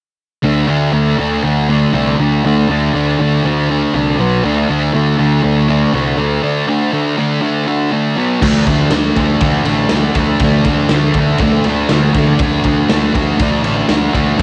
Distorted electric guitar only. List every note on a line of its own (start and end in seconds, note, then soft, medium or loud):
0.43 0.67 D3 medium
0.43 0.68 A3 medium
0.43 0.69 D4 medium
0.67 0.93 D3 medium
0.67 0.93 A3 medium
0.67 0.93 D4 medium
0.93 1.18 D3 medium
0.93 1.19 A3 medium
0.93 1.19 D4 medium
1.19 1.42 D3 medium
1.19 1.43 A3 medium
1.19 1.44 D4 medium
1.44 1.68 D3 medium
1.44 1.69 A3 loud
1.44 1.69 D4 loud
1.69 1.92 D3 medium
1.69 1.93 A3 medium
1.69 1.94 D4 medium
1.94 2.18 D3 medium
1.94 2.19 A3 loud
1.94 2.20 D4 loud
2.19 2.44 D3 medium
2.19 2.45 A3 medium
2.19 2.45 D4 medium
2.45 2.68 D3 medium
2.45 2.69 A3 loud
2.45 2.70 D4 loud
2.69 2.92 D3 medium
2.69 2.94 A3 medium
2.69 2.94 D4 medium
2.93 3.19 D3 medium
2.93 3.20 A3 medium
2.93 3.20 D4 loud
3.20 3.43 D3 medium
3.20 3.44 A3 medium
3.20 3.45 D4 medium
3.44 3.68 D3 medium
3.44 3.69 A3 medium
3.44 3.69 D4 loud
3.69 3.93 D3 medium
3.69 3.94 A3 medium
3.69 3.94 D4 medium
3.94 4.18 D3 loud
3.94 4.18 A3 loud
3.94 4.18 D4 loud
4.19 4.42 B2 medium
4.19 4.44 F#3 medium
4.19 4.43 B3 loud
4.44 4.69 D3 medium
4.44 4.70 A3 medium
4.44 4.70 D4 loud
4.69 4.93 D3 medium
4.69 4.94 A3 medium
4.69 4.94 D4 medium
4.93 5.16 D3 medium
4.93 5.17 A3 loud
4.93 5.18 D4 loud
5.17 5.42 D3 medium
5.17 5.42 A3 medium
5.17 5.43 D4 medium
5.43 5.67 D3 medium
5.43 5.68 A3 loud
5.43 5.68 D4 loud
5.68 5.92 D3 medium
5.68 5.93 A3 medium
5.68 5.94 D4 medium
5.94 6.16 D3 medium
5.94 6.17 A3 loud
5.94 6.18 D4 loud
6.17 6.41 D3 medium
6.17 6.42 A3 medium
6.17 6.42 D4 medium
6.42 6.66 D3 medium
6.42 6.67 A3 medium
6.42 6.67 D4 loud
6.67 6.91 D3 medium
6.67 6.92 A3 medium
6.67 6.92 D4 medium
6.92 7.16 D3 medium
6.92 7.16 A3 loud
6.92 7.18 D4 loud
7.17 7.40 D3 medium
7.17 7.41 A3 medium
7.17 7.41 D4 medium
7.41 7.65 D3 medium
7.41 7.66 A3 medium
7.41 7.67 D4 medium
7.67 7.90 D3 medium
7.67 7.91 A3 medium
7.67 7.91 D4 medium
7.92 8.16 D3 medium
7.92 8.16 A3 loud
7.92 8.16 D4 loud
8.17 8.41 B2 medium
8.17 8.41 F#3 medium
8.17 8.41 B3 medium
8.41 8.92 D3 medium
8.41 8.70 A3 loud
8.41 8.67 D4 loud
8.67 8.93 A3 medium
8.67 8.94 D4 medium
8.92 9.41 D3 medium
8.92 9.20 A3 loud
8.92 9.16 D4 loud
9.17 9.43 A3 medium
9.17 9.44 D4 medium
9.41 9.90 D3 medium
9.41 9.69 A3 medium
9.41 9.66 D4 loud
9.67 9.92 A3 medium
9.67 9.94 D4 medium
9.90 10.41 D3 medium
9.90 10.19 A3 medium
9.94 10.16 D4 medium
10.16 10.43 A3 medium
10.16 10.44 D4 medium
10.41 10.90 D3 medium
10.41 10.69 A3 loud
10.41 10.66 D4 loud
10.66 10.91 A3 medium
10.66 10.94 D4 medium
10.90 11.39 D3 loud
10.90 11.19 A3 loud
10.94 11.16 D4 loud
11.16 11.42 A3 medium
11.16 11.43 D4 medium
11.40 11.90 D3 medium
11.40 11.69 A3 loud
11.40 11.65 D4 medium
11.66 11.91 A3 medium
11.66 11.93 D4 medium
11.90 12.39 D3 medium
11.90 12.18 A3 medium
11.90 12.14 D4 medium
12.14 12.42 D4 medium
12.18 12.41 A3 medium
12.40 12.89 D3 medium
12.40 12.67 A3 loud
12.40 12.63 D4 loud
12.64 12.91 A3 medium
12.64 12.93 D4 medium
12.89 13.38 D3 medium
12.89 13.17 A3 medium
12.89 13.14 D4 loud
13.14 13.40 A3 medium
13.14 13.41 D4 medium
13.38 13.88 D3 medium
13.38 13.67 A3 loud
13.38 13.63 D4 loud
13.64 13.90 A3 medium
13.64 13.91 D4 medium
13.88 14.37 D3 medium
13.88 14.16 A3 medium
13.88 14.13 D4 medium
14.13 14.39 A3 medium
14.13 14.41 D4 medium
14.38 14.42 D3 medium